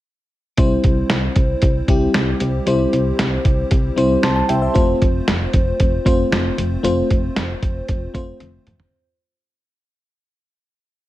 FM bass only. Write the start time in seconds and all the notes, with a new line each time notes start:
0.58 C2
0.84 C2
1.10 C2
1.36 C2
1.63 C2
1.88 C2
2.15 C2
2.41 C2
2.67 C2
2.93 C2
3.19 C2
3.45 C2
3.71 C2
3.98 C2
4.24 C2
4.49 C2
4.76 F1
5.02 F1
5.28 F1
5.54 F1
5.80 F1
6.06 F1
6.32 F1
6.58 F1
6.84 F1
7.11 F1
7.36 F1
7.63 F1
7.89 F1
8.15 F1
8.40 F1
8.67 F1